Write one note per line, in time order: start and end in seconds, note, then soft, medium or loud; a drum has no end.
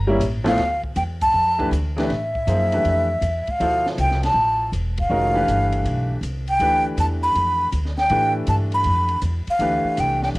0.00 0.19 G1 medium
0.07 0.19 G3 medium
0.07 0.19 A#3 medium
0.07 0.20 C#4 medium
0.07 0.20 E4 medium
0.20 0.57 A1 medium
0.20 hi-hat pedal medium
0.20 ride medium
0.44 0.56 D2 medium
0.44 0.56 F3 medium
0.44 0.57 A3 medium
0.44 0.57 B3 medium
0.44 0.57 E4 medium
0.44 0.81 F5 medium
0.44 snare medium
0.44 ride medium
0.58 0.95 D2 medium
0.58 snare soft
0.58 ride medium
0.84 kick medium
0.96 1.33 E2 medium
0.96 1.03 G5 medium
0.96 hi-hat pedal medium
0.96 ride medium
1.21 1.69 A5 medium
1.21 kick medium
1.21 ride medium
1.34 1.70 F2 medium
1.58 1.70 E3 medium
1.58 1.70 A3 medium
1.58 1.70 D4 medium
1.58 1.71 G4 medium
1.58 1.71 B4 medium
1.58 kick soft
1.71 2.08 D2 medium
1.71 hi-hat pedal medium
1.71 ride medium
1.96 2.08 E3 medium
1.96 2.08 A3 medium
1.96 2.09 D4 medium
1.96 2.09 G4 medium
1.96 2.09 B4 medium
1.96 3.52 E5 medium
1.96 snare medium
1.96 ride soft
2.10 2.46 A2 medium
2.10 snare soft
2.10 ride soft
2.35 kick soft
2.47 2.84 F#2 medium
2.47 2.70 F3 soft
2.47 2.70 A#3 soft
2.47 2.70 D#4 soft
2.47 2.70 G#4 soft
2.47 2.71 C5 soft
2.47 hi-hat pedal medium
2.47 ride medium
2.72 3.05 E3 soft
2.72 3.05 A3 soft
2.72 3.05 D4 soft
2.72 3.06 G4 soft
2.72 3.06 B4 medium
2.72 ride medium
2.85 3.21 F2 medium
2.85 ride soft
3.21 3.45 E2 medium
3.21 hi-hat pedal medium
3.21 ride medium
3.47 3.87 F5 medium
3.47 muted upright bass stroke soft
3.47 kick soft
3.47 ride soft
3.60 3.97 D2 medium
3.60 4.66 B2 soft
3.60 4.65 F3 medium
3.60 4.66 E4 medium
3.60 4.66 A4 medium
3.60 4.66 C5 medium
3.60 ride medium
3.86 snare soft
3.98 4.33 C2 medium
3.98 4.22 G5 medium
3.98 hi-hat pedal medium
3.98 ride medium
4.11 snare soft
4.23 4.70 A5 medium
4.23 snare soft
4.23 ride medium
4.34 4.71 A1 medium
4.72 5.09 E1 medium
4.72 hi-hat pedal soft
4.72 ride medium
4.98 6.15 F5 medium
4.98 kick medium
4.98 ride medium
5.10 5.46 F1 medium
5.10 5.32 D#3 medium
5.10 5.33 G#3 medium
5.10 5.33 C#4 medium
5.10 5.33 F#4 soft
5.10 5.33 A#4 medium
5.34 6.15 E3 medium
5.34 6.15 A3 soft
5.34 6.15 D4 medium
5.34 6.15 G4 medium
5.34 6.16 B4 medium
5.48 5.84 G1 medium
5.48 hi-hat pedal medium
5.48 ride medium
5.72 ride medium
5.84 6.20 B1 medium
5.84 ride medium
6.21 6.58 C2 medium
6.21 hi-hat pedal medium
6.21 ride medium
6.48 6.83 G5 medium
6.48 ride soft
6.60 6.96 D2 medium
6.60 7.65 E3 medium
6.60 7.65 A3 soft
6.60 7.66 D4 soft
6.60 7.66 G4 soft
6.60 7.66 B4 medium
6.60 ride medium
6.97 7.34 E2 medium
6.97 7.06 A5 medium
6.97 hi-hat pedal medium
6.97 ride medium
7.23 7.69 B5 medium
7.35 7.71 F2 medium
7.35 ride medium
7.72 8.09 D2 medium
7.72 hi-hat pedal medium
7.72 ride medium
7.86 snare soft
7.98 8.33 G5 loud
7.98 snare soft
8.10 8.46 A2 medium
8.10 9.15 E3 medium
8.10 9.15 A3 medium
8.10 9.15 D4 medium
8.10 9.15 G4 soft
8.10 9.16 B4 medium
8.10 ride medium
8.47 8.84 G2 medium
8.47 8.55 A5 medium
8.47 hi-hat pedal medium
8.47 ride medium
8.72 9.20 B5 medium
8.72 ride soft
8.84 9.21 F2 medium
8.84 ride medium
9.08 ride soft
9.22 9.45 E2 medium
9.22 hi-hat pedal medium
9.22 ride medium
9.47 10.01 F5 medium
9.47 muted upright bass stroke soft
9.47 ride soft
9.59 9.82 D2 medium
9.59 10.39 E3 medium
9.59 10.39 A3 soft
9.59 10.39 D4 medium
9.59 10.39 G4 soft
9.59 10.39 B4 medium
9.59 ride medium
9.84 muted upright bass stroke soft
9.97 10.34 C2 medium
9.97 10.23 G5 medium
9.97 hi-hat pedal medium
9.97 ride medium
10.22 10.29 G5 medium
10.22 snare soft
10.35 10.39 A1 medium
10.35 ride medium